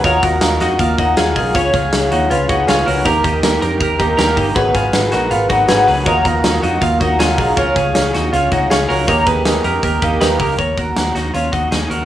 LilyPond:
<<
  \new Staff \with { instrumentName = "Synth keys" } { \time 4/4 \key ees \minor \tempo 4 = 159 <f' ges' ees''>8 <f' ges' ees''>8 <f' ges' ees''>8 <f' ges' ees''>8 <f' ges' ees''>8 <f' ges' ees''>8 <f' ges' aes'>8 <f' ges' ees''>8 | <f' aes' des''>8 <f' aes' des''>8 <f' aes' des''>8 <f' aes' des''>8 <f' aes' ces''>8 <f' aes' des''>8 <f' aes' des''>8 <f' aes' des''>8 | <ees' g' bes'>8 <ees' g' bes'>8 <ees' g' bes'>8 <ees' g' bes'>8 <ees' g' bes'>8 <ees' g' bes'>8 <ees' g' bes'>8 <ees' g' bes'>8 | <ges' aes' ces''>8 <ges' aes' ces''>8 <ges' aes' ces''>8 <ges' aes' bes'>8 <ges' aes' ces''>8 <ges' aes' des''>8 <ges' aes' ces''>8 <ges' aes' ces''>8 |
<f' ges' ees''>8 <f' ges' ees''>8 <f' ges' ees''>8 <f' ges' ees''>8 <f' ges' ees''>8 <f' ges' ees''>8 <f' ges' ees''>8 <f' ges' ees'' aes''>8 | <f' aes' des''>8 <f' aes' des''>8 <f' aes' des''>8 <f' aes' des''>8 <f' aes' des''>8 <f' aes' des''>8 <f' aes' des''>8 <f' aes' des''>8 | <g' bes' ees''>8 <g' bes' ees''>8 <g' bes' ees''>8 <g' bes' ees''>8 <g' bes' ees''>8 <g' bes' f''>8 <g' bes' ees''>8 <g' bes' ees''>8 | r1 | }
  \new Staff \with { instrumentName = "Clean electric guitar" } { \time 4/4 \key ees \minor <bes' des''>8 <ges' bes'>4 <ees' ges'>8 <bes f'>8 <ees' ges'>8 <f' aes'>8 <f' aes'>8 | <aes' des''>8 <f' aes'>4 <ees' ges'>8 <des' f'>8 <ees' ges'>8 <f' aes'>8 <ges' bes'>8 | <g' bes'>8 <ees' g'>4 <g' bes'>8 <g' bes'>8 <ees' g'>8 <g' bes'>8 <ees' g'>8 | <aes' ces''>8 <f' aes'>4 <ees' ges'>8 <ces' f'>8 <ees' ges'>8 <ees' aes'>8 <aes' ces''>8 |
<bes' des''>8 <ges' bes'>4 <ees' ges'>8 <bes f'>8 <ees' ges'>8 <f' aes'>8 <f' aes'>8 | <f' bes'>8 <f' aes'>4 <ees' ges'>8 <des' f'>8 <ees' ges'>8 <f' aes'>8 <ges' bes'>8 | <bes' des''>8 <aes' ces''>4 <g' bes'>8 <g' bes'>8 <ees' g'>8 <g' ces''>8 <g' bes'>8 | <bes' des''>8 <ges' bes'>4 <ees' ges'>8 <des' f'>8 <ees' ges'>8 <ees' aes'>8 <ges' bes'>8 | }
  \new Staff \with { instrumentName = "Twelve-string acoustic guitar" } { \time 4/4 \key ees \minor <ees ges ees' f' bes'>8 <ges ees' f' bes'>16 <ees' f' bes'>4.~ <ees' f' bes'>16 <ges ees' f' bes'>8 <ges ees' f' bes'>8 <ges ees' f' bes'>8 | <des aes des' f' des''>8 <aes des' f' des''>16 <des' f' des''>4.~ <des' f' des''>16 <aes des' f' des''>8 <aes des' f' des''>8 <aes des' f' des''>8 | <ees bes ees' g' bes'>8 <bes ees' g' bes'>16 <ees' g' bes'>4.~ <ees' g' bes'>16 <bes ees' g' bes'>8 <bes ees' g' bes'>8 <bes ees' g' bes'>8 | <aes, ees ges ces' ees' ces''>8 <ges ces' ees' ces''>16 <ges ces' ees' ces''>4.~ <ges ces' ees' ces''>16 <ges ces' ees' ces''>8 <ges ces' ees' ces''>8 <ges ces' ees' ces''>8 |
<ees ges ees' f' bes'>8 <ges ees' f' bes'>16 <ees' f' bes'>4.~ <ees' f' bes'>16 <ges ees' f' bes'>8 <ges ees' f' bes'>8 <ges ees' f' bes'>8 | <des aes des' f' des''>8 <aes des' f' des''>16 <des' f' des''>4.~ <des' f' des''>16 <aes des' f' des''>8 <aes des' f' des''>8 <aes des' f' des''>8 | <ees bes ees' g' bes'>8 <bes ees' g' bes'>16 <ees' g' bes'>4.~ <ees' g' bes'>16 <bes ees' g' bes'>8 <bes ees' g' bes'>8 <bes ees' g' bes'>8 | r1 | }
  \new Staff \with { instrumentName = "Fingered electric bass" } { \clef bass \time 4/4 \key ees \minor ees,8 ees,8 ees,8 f,8 ees,8 ees,8 ees,8 ces,8 | des,8 des,8 des,8 ees,8 des,8 des,8 des,8 des,8 | ees,8 ees,8 ees,8 f,8 ees,8 ees,8 ees,8 g,,8 | aes,,8 aes,,8 aes,,8 bes,,8 aes,,8 aes,,8 aes,,8 des,8 |
ees,8 ees,8 ees,8 f,8 ees,8 ees,8 ees,8 ces,8 | des,8 des,8 des,8 ees,8 des,8 des,8 des,8 des,8 | ees,8 ees,8 ees,8 f,8 ees,8 ees,8 ees,8 des,8 | ees,8 ees,8 ees,8 ees,8 ees,8 ees,8 ees,8 ees,8 | }
  \new DrumStaff \with { instrumentName = "Drums" } \drummode { \time 4/4 <hh bd>8 <hh bd>8 <hh sn>8 <hh sn>8 <hh bd>8 <hh bd>8 <hh sn>8 <hho bd>8 | <hh bd>8 <hh bd>8 <hh sn>8 hh8 hh8 <hh bd>8 <hh sn>8 hho8 | <hh bd>8 <hh bd>8 <hh sn>8 hh8 <hh bd>8 <hh bd>8 <hh sn>8 <hho bd>8 | <hh bd>8 <hh bd>8 <hh sn>8 <hh sn>8 hh8 <hh bd>8 <hh sn>8 hho8 |
<hh bd>8 <hh bd>8 <hh sn>8 hh8 <hh bd>8 <hh bd>8 <hh sn>8 <hho bd>8 | <hh bd>8 <hh bd>8 <hh sn>8 <hh sn>8 hh8 <hh bd>8 <hh sn>8 hho8 | <hh bd>8 <hh bd>8 <hh sn>8 hh8 <hh bd>8 <hh bd>8 <hh sn>8 <hho bd>8 | <hh bd>8 <hh bd>8 <hh sn>8 <hh sn>8 hh8 <hh bd>8 <hh sn>8 hh8 | }
>>